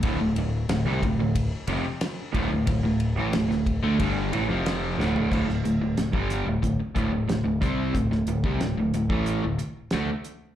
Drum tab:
CC |----------------|----------------|x---------------|----------------|
RD |x-x-x-x-x-x-x-x-|x-x-x-x-x-x-x---|----------------|----------------|
HH |----------------|----------------|--x-x-x-x-x-x-x-|x-x-x-x-x-x-x-x-|
SD |----o-------o---|----oo------o-o-|-o--o-o-----o---|-o--o-------o---|
FT |----------------|---------------o|----------------|----------------|
BD |o-----o-o-----o-|o-----o-o-------|o----o--o-o---o-|o--o---o--------|